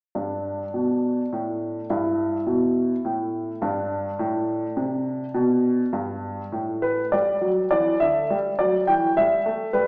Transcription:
0.15 G2 D4
0.74 B2
1.32 A2
1.90 G2 E4
2.47 B2
3.05 A2
3.62 G2 D4
4.19 A2
4.77 C3
5.34 B2
5.93 G2
6.52 A2
6.82 B4
7.12 G3 D5
7.41 F#3
7.71 E3 D5
8.00 D3 E5
8.30 G3
8.59 F#3 D5
8.87 E3 G5
9.17 G3 E5
9.46 A3
9.73 G3 B4

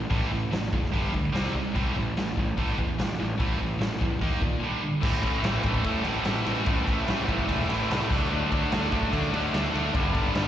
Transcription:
0.10 A1 A2 E3 A3, kick, open hi-hat
0.31 A1 A2 E3
0.51 A1 A2 E3, snare, open hi-hat
0.73 F#1 A2 E3, kick
0.85 snare
0.94 G1 G2 D3 G3, kick, open hi-hat
1.14 D2 G2 D3, kick
1.33 C2 C3 G3 C4, snare, open hi-hat
1.55 C2 C3 G3
1.74 A1 A2 E3 A3, kick, open hi-hat
1.96 A1 A2 E3
2.16 A1 A2 E3, snare, open hi-hat
2.37 A1 A2 E3, kick
2.57 A1 A2 E3 A3, kick, open hi-hat
2.78 E2 A2 E3, kick
2.98 A1 A2 E3, snare, open hi-hat
3.19 A1 A2 E3
3.38 A1 A2 E3 A3, kick, open hi-hat
3.58 A1 A2 E3
3.79 A1 A2 E3, snare, open hi-hat
3.99 E2 A2 E3, kick
4.21 D#2 D#3 A#3 D#4, kick, open hi-hat
4.41 A#2 D#3 A#3, kick
4.60 G2 D3 G3
4.81 G2 D3
5.01 A1 A2 E3 A3 C4 E4 B4, kick, crash
5.23 A2 E3 A3 C4 E4, kick, ride
5.43 A1 A2 E3 A3 C4 E4, snare, ride
5.63 A1 A2 E3 A3 C4 E4, kick, ride
5.74 kick
5.84 A2 E3 A3 C4 E4, kick, ride
6.05 A1 A2 E3 A3 C4 E4, ride
6.25 A1 A2 E3 A3 C4 E4, snare, ride
6.46 A1 A2 E3 A3 C4 E4, snare, ride
6.66 A1 A2 E3 A3 C4 E4, kick, ride
6.86 A2 E3 A3 C4 E4, kick, ride
7.07 A1 A2 E3 A3 C4 E4, snare, ride
7.27 A2 E3 A3 C4 E4, kick, ride
7.39 kick
7.47 E1 A2 E3 A3 C4 E4, kick, ride
7.69 A1 A2 E3 A3 C4 E4, ride
7.89 C2 A2 E3 A3 C4 E4, snare, ride
8.09 D2 D3 F#3 A3 D4 A4 E5, kick, snare, crash
8.29 D2 D3 F#3 A3 D4
8.50 D3 F#3 A3 D4, kick, ride
8.71 D2 D3 F#3 A3 D4, snare, ride
8.92 D2 D3 F#3 A3 D4, kick, ride
9.03 kick
9.11 D3 F#3 A3 D4, kick, ride
9.32 D2 D3 F#3 A3 D4, ride
9.52 D2 D3 F#3 A3 D4, snare, ride
9.73 D2 D3 F#3 A3 D4, ride
9.93 G1 G2 D3 G3 B3 D4, kick, ride
10.13 G2 D3 G3 B3 D4, kick, ride
10.33 G1 G2 D3 G3 B3 D4, snare, ride

